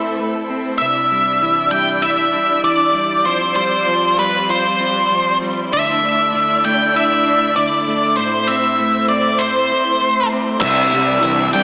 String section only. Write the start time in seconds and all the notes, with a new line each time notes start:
Already playing: A3 C4 E4 A4
0.78 G3 D4 E4 D5
3.23 G3 C4 F4
5.71 A3 D4 E4 D5
8.16 C4 C5
10.62 G3 D4 E4 D5